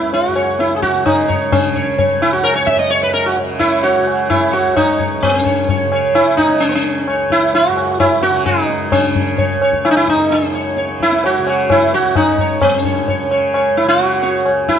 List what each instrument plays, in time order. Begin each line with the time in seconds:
Already playing: tanpura C#2 F#2 C#3, sitar E4
0.02 tabla te
0.13 sitar F#4, tabla tin
0.28 tanpura F#2
0.36 sitar C#5, tabla na
0.59 sitar E4, tabla te
0.71 tabla te
0.76 sitar G#4
0.82 sitar F#4, tabla ke
0.90 tanpura C#3
0.94 tabla te
1.05 sitar D#4, tabla na, tabla ge
1.28 sitar C#5, tabla ge
1.52 tanpura C#3, sitar C#4, tabla na, tabla ge
1.75 sitar C#5, tabla ge
1.98 sitar C#5, tabla tin, tabla ge
2.14 tanpura C#2
2.22 sitar E4, tabla na
2.33 sitar F#4
2.44 sitar A#4, tabla na
2.55 sitar C#5
2.66 sitar E5, tabla ke
2.75 tanpura F#2, sitar D#5, tabla te
2.90 sitar C#5, tabla te
3.03 sitar B4
3.14 sitar A#4, tabla te
3.26 sitar F#4
3.37 tanpura C#3, tabla na
3.59 sitar E4 C#5, tabla ke
3.83 sitar F#4 C#5, tabla tin
3.98 tanpura C#3
4.07 tabla na
4.30 sitar E4 C#5, tabla na, tabla ge
4.53 sitar F#4 C#5, tabla te
4.60 tanpura C#2
4.76 sitar D#4 C#5, tabla na, tabla ge
5.00 sitar C#5, tabla ge
5.22 tanpura F#2, sitar B3, tabla na, tabla ge
5.42 sitar C#4 C#5, tabla ge
5.69 sitar C#5, tabla tin, tabla ge
5.85 tanpura C#3
5.92 sitar C#5, tabla na
6.15 sitar E4, tabla na
6.37 sitar D#4, tabla ke
6.46 tanpura C#3
6.50 tabla te
6.60 sitar C#4, tabla te
6.69 sitar B3
6.75 sitar C#4
6.84 tabla te
7.06 tanpura C#2, sitar C#5, tabla na
7.30 sitar E4, tabla ke
7.53 sitar F#4, tabla tin
7.69 tanpura F#2
7.77 tabla na
8.00 sitar E4, tabla na, tabla ge
8.23 sitar F#4, tabla te
8.30 tanpura C#3
8.46 sitar D#4, tabla na, tabla ge
8.69 tabla te
8.92 tanpura C#3, sitar C#4, tabla na, tabla ge
9.15 tabla ge
9.38 sitar C#5, tabla tin, tabla ge
9.54 tanpura C#2
9.61 sitar C#5, tabla na
9.73 tabla ke
9.85 sitar E4, tabla na
9.91 sitar D#4
9.96 sitar E4
10.08 sitar D#4, tabla ke
10.15 tanpura F#2
10.20 tabla te
10.31 sitar C#4, tabla te
10.54 sitar C#5, tabla te
10.77 tanpura C#3, sitar C#5, tabla te
10.89 tabla te
11.00 sitar E4, tabla ke
11.12 tabla te
11.24 sitar F#4, tabla tin
11.39 tanpura C#3
11.47 sitar C#5, tabla na
11.70 sitar E4, tabla na, tabla ge
11.93 sitar F#4, tabla te
12.00 tanpura C#2
12.15 sitar D#4, tabla na, tabla ge
12.38 sitar C#5, tabla ge
12.61 tanpura F#2, sitar B3, tabla na, tabla ge
12.81 sitar C#4 C#5, tabla ge
13.08 sitar C#5, tabla tin, tabla ge
13.22 tanpura C#3
13.31 sitar C#5, tabla na
13.54 sitar C#5, tabla na
13.77 sitar E4, tabla te
13.84 tanpura C#3
13.88 sitar F#4
14.00 tabla te
14.22 sitar C#5, tabla te
14.46 tanpura C#2, tabla na
14.69 sitar E4, tabla ke